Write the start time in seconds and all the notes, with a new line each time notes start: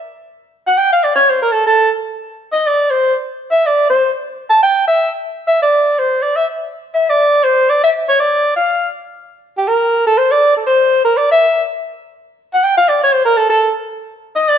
0.67 F#5
0.78 G5
0.92 F5
1.04 D5
1.16 C#5
1.29 C5
1.42 A#4
1.52 A4
1.67 A4
2.52 D#5
2.67 D5
2.91 C5
3.51 E5
3.66 D5
3.90 C5
4.50 A5
4.63 G5
4.88 E5
5.48 E5
5.62 D5
5.99 C5
6.22 D5
6.36 E5
6.94 E5
7.10 D5
7.44 C5
7.70 D5
7.84 E5
8.09 C#5
8.20 D5
8.56 F5
9.58 G4
9.68 A#4
10.06 A4
10.18 C5
10.31 D5
10.57 A4
10.67 C5
11.05 A#4
11.17 D5
11.31 E5
12.54 F#5
12.64 G5
12.77 F5
12.88 D5
13.03 C#5
13.13 C5
13.25 A#4
13.37 A4
13.49 A4
14.36 D#5
14.49 D5